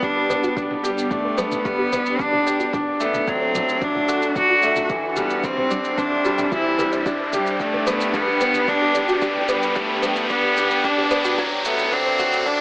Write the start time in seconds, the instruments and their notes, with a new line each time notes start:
Already playing: analog synth bass G1, upright piano G3 B3 D4 G4, ambient pad B3 D4 G4 D5, riser
0.03 upright piano G3, cello D4, synth arpeggio sound G5, kick, shaker
0.16 synth arpeggio sound G4
0.30 upright piano B3, synth arpeggio sound D5, mid tom, shaker
0.43 synth arpeggio sound F#4, shaker
0.56 upright piano D4, synth arpeggio sound G4, kick, shaker
0.71 mid tom
0.84 cello G3, upright piano G4, shaker
0.98 shaker
1.10 cello A3, upright piano D4, synth arpeggio sound G5, kick, mid tom, shaker
1.25 synth arpeggio sound B4
1.38 synth arpeggio sound G3, upright piano B3, shaker
1.52 mid tom, shaker
1.65 upright piano G3, cello B3, kick, shaker
1.78 synth arpeggio sound G4
1.92 upright piano B3, mid tom, shaker
2.06 shaker
2.19 upright piano D4, cello D4, synth arpeggio sound G5, kick, shaker
2.32 synth arpeggio sound G4, mid tom
2.46 upright piano G4, synth arpeggio sound D5, shaker
2.60 synth arpeggio sound F#4, shaker
2.73 analog synth bass D2, upright piano D4, ambient pad F#4 A4 F#5, synth arpeggio sound F#4, kick, mid tom, shaker
3.00 upright piano A3, cello B3, shaker
3.14 mid tom, shaker
3.27 upright piano F#3, cello C4, synth arpeggio sound F#5, kick, shaker
3.41 synth arpeggio sound C5
3.54 synth arpeggio sound F#3, upright piano A3, mid tom, shaker
3.69 shaker
3.82 upright piano D4, cello D4, kick, shaker
3.95 synth arpeggio sound F#4, mid tom
4.08 upright piano F#4, shaker
4.22 shaker
4.35 upright piano D4, cello F#4, synth arpeggio sound F#5, kick, mid tom, shaker
4.50 synth arpeggio sound F#4
4.62 upright piano A3, synth arpeggio sound D5, shaker
4.76 synth arpeggio sound F#4, mid tom, shaker
4.89 analog synth bass C2, upright piano E3, ambient pad G4 C5 E5, synth arpeggio sound G4, kick, shaker
5.16 upright piano G3, cello B3, mid tom, shaker
5.30 shaker
5.43 upright piano C4, cello C4, synth arpeggio sound G5, kick, shaker
5.57 synth arpeggio sound C5, mid tom
5.70 synth arpeggio sound G3, upright piano D4, shaker
5.84 shaker
5.98 upright piano C4, cello D4, kick, mid tom, shaker
6.11 synth arpeggio sound G4
6.25 upright piano G3, synth arpeggio sound F#4, shaker
6.38 synth arpeggio sound G5, mid tom, shaker
6.52 upright piano E3, cello E4, synth arpeggio sound F#4, kick, shaker
6.78 upright piano G3, synth arpeggio sound B4, mid tom, shaker
6.92 synth arpeggio sound D5, shaker
7.05 analog synth bass G1, upright piano D4, synth arpeggio sound G4, ambient pad B4 G5, kick, shaker
7.33 cello G3, upright piano G4, mid tom, shaker
7.47 shaker
7.60 cello A3, upright piano D4, synth arpeggio sound G5, kick, shaker
7.74 synth arpeggio sound B4, mid tom
7.87 synth arpeggio sound G3, upright piano B3, shaker
8.01 shaker
8.14 upright piano G3, cello B3, kick, mid tom, shaker
8.27 synth arpeggio sound G4
8.41 upright piano B3, shaker
8.54 mid tom, shaker
8.68 upright piano D4, cello D4, synth arpeggio sound G5, kick, shaker
8.81 synth arpeggio sound G4
8.95 upright piano G4, synth arpeggio sound D5, mid tom, shaker
9.08 synth arpeggio sound F#4, shaker
9.21 upright piano D4, synth arpeggio sound G4, kick, shaker
9.35 mid tom
9.48 cello G3, upright piano B3, shaker
9.62 shaker
9.75 upright piano G3, cello A3, synth arpeggio sound G5, kick, mid tom, shaker
9.89 synth arpeggio sound B4
10.02 synth arpeggio sound G3, upright piano B3, shaker
10.16 mid tom, shaker
10.30 cello B3, upright piano D4, kick, shaker
10.43 synth arpeggio sound G4
10.57 upright piano G4, mid tom, shaker
10.71 shaker
10.84 upright piano D4, cello D4, synth arpeggio sound G5, kick, shaker
10.97 synth arpeggio sound G4, mid tom
11.11 upright piano B3, synth arpeggio sound D5, shaker
11.24 synth arpeggio sound F#4, shaker
11.38 upright piano F#3, ambient pad D4 F#4 A4 F#5, synth arpeggio sound F#4, kick, mid tom, shaker
11.65 upright piano A3, cello B3, shaker
11.79 mid tom, shaker
11.92 cello C4, upright piano D4, synth arpeggio sound F#5, kick, shaker
12.06 synth arpeggio sound C5
12.19 synth arpeggio sound F#3, upright piano F#4, mid tom, shaker
12.33 shaker
12.46 upright piano D4, cello D4, kick, shaker